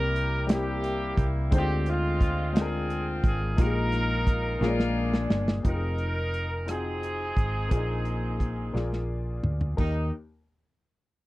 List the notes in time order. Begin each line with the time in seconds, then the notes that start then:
Already playing: C2 C3 G3 A#3 C4 E4 G4 A#4
0.16 closed hi-hat
0.47 G3 A#3 C4 E4 G4, snare, closed hi-hat
0.53 A#3 E4 G4
0.84 closed hi-hat
1.17 C2, kick, closed hi-hat
1.51 D2 D3 G#3 C4 D4 D#4 C5, kick, closed hi-hat
1.55 C4 F4 G4
1.86 G#3 C4 F4, closed hi-hat
2.21 kick, closed hi-hat
2.52 G#3 C4 D4 F4 G#4, closed hi-hat
2.57 C4 F4 G#4, snare
2.61 A#4
2.90 closed hi-hat
3.24 G#1 G#4, kick, closed hi-hat
3.57 A#1 A#2 G#3 A#3 D#4 F4 G4, kick, closed hi-hat
3.61 D#4 F4 A#4
3.66 G#4
3.92 snare, closed hi-hat
4.27 kick, closed hi-hat
4.60 A#1 A#2 G#3 A#3 C#4 D4 F4 G#4, snare
4.68 D5
4.80 snare
5.14 snare
5.30 G1, snare
5.48 snare
5.63 F1 C4 D#4 F4 G4 A#4, kick, closed hi-hat
5.73 G#4
5.98 closed hi-hat
6.34 closed hi-hat
6.66 C4 D#4 F4 F#4, cross-stick, closed hi-hat
6.70 C4 D#4 G#4
6.76 G5
7.03 closed hi-hat
7.37 G#1, kick, closed hi-hat
7.69 A#1 A#2 A#3 D4 F4 G#4, kick, closed hi-hat
7.76 D#4
8.05 cross-stick, closed hi-hat
8.40 kick, closed hi-hat
8.73 A#1 A#2 A#3 F4 G#4 D5, snare
8.93 snare
9.43 D2, mid tom
9.61 floor tom
9.77 D#2 A#3 D#4 G4 A#4, kick, crash